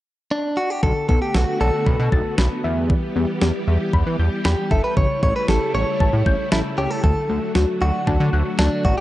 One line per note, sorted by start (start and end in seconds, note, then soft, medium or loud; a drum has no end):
0.31 0.58 D4 medium
0.57 0.70 F#4 medium
0.70 0.83 G4 medium
0.83 0.93 B1 loud
0.83 1.05 D3 medium
0.83 2.62 D3 medium
0.83 2.62 A3 medium
0.83 4.93 B3 medium
0.83 2.62 F#4 medium
0.83 1.07 A4 loud
0.83 kick loud
1.09 1.19 B1 loud
1.09 1.31 B3 medium
1.09 1.21 A4 medium
1.09 kick loud
1.22 1.35 G4 medium
1.35 1.45 B1 medium
1.35 1.60 F#4 medium
1.35 1.57 A4 medium
1.35 snare loud
1.61 1.71 B1 loud
1.61 2.34 A4 medium
1.61 1.83 D5 medium
1.86 1.96 B1 loud
1.86 2.09 B5 medium
1.86 kick medium
2.00 2.09 B2 loud
2.12 2.22 B1 medium
2.12 2.35 A6 medium
2.12 kick medium
2.38 2.48 B1 loud
2.38 2.61 B5 medium
2.38 snare loud
2.64 2.94 E2 loud
2.64 4.94 E3 medium
2.64 7.00 G3 medium
2.64 4.94 G4 medium
2.64 2.86 E5 medium
2.90 3.12 E3 medium
2.90 kick loud
3.16 3.26 E2 medium
3.16 3.38 B3 medium
3.41 3.52 E2 loud
3.41 3.64 G4 medium
3.41 snare loud
3.68 3.78 E2 medium
3.68 3.90 E5 medium
3.93 4.03 E2 loud
3.93 4.16 B5 loud
3.93 kick medium
4.06 4.16 E3 medium
4.19 4.29 E2 loud
4.19 4.42 G6 medium
4.45 4.55 E2 loud
4.45 4.72 G4 medium
4.45 4.67 B5 medium
4.45 snare loud
4.71 4.81 G1 loud
4.71 4.84 A4 medium
4.71 4.93 E5 medium
4.71 kick medium
4.84 4.96 B4 loud
4.97 5.07 A1 medium
4.97 7.02 C#3 medium
4.97 5.19 C#3 medium
4.97 9.00 A3 medium
4.97 7.02 E4 medium
4.97 5.21 C#5 loud
4.97 kick loud
5.23 5.33 A1 loud
5.23 5.45 A3 medium
5.23 5.36 C#5 medium
5.23 kick medium
5.36 5.49 B4 medium
5.48 5.58 A1 loud
5.48 5.71 G4 medium
5.48 5.74 A4 medium
5.48 snare loud
5.74 5.84 A1 loud
5.74 6.52 C#5 loud
5.74 5.97 C#5 medium
6.00 6.10 A1 loud
6.00 6.23 A5 loud
6.00 kick medium
6.13 6.23 A2 loud
6.26 6.36 A1 loud
6.26 6.49 G6 medium
6.26 kick medium
6.52 6.62 A1 loud
6.52 6.59 E4 medium
6.52 6.74 A5 medium
6.52 snare loud
6.78 6.88 C#2 loud
6.78 6.91 G4 medium
6.78 7.00 C#5 medium
6.91 7.02 A4 medium
7.04 7.14 D2 medium
7.04 9.00 D3 medium
7.04 7.26 D3 medium
7.04 9.00 F#3 medium
7.04 9.00 F#4 medium
7.04 7.52 A4 medium
7.04 kick loud
7.29 7.39 D2 loud
7.29 7.52 A3 medium
7.55 7.65 D2 loud
7.55 7.78 F#4 medium
7.55 snare loud
7.81 7.91 D2 medium
7.81 8.55 F#4 medium
7.81 8.04 D5 medium
8.07 8.17 D2 loud
8.07 8.29 A5 loud
8.07 kick medium
8.20 8.30 D3 loud
8.33 8.43 D2 loud
8.33 8.55 F#6 medium
8.59 8.69 D2 loud
8.59 8.83 D4 medium
8.59 8.81 A5 medium
8.59 snare loud
8.85 8.95 A1 medium
8.85 8.97 F#4 medium
8.85 9.00 D5 medium
8.85 kick medium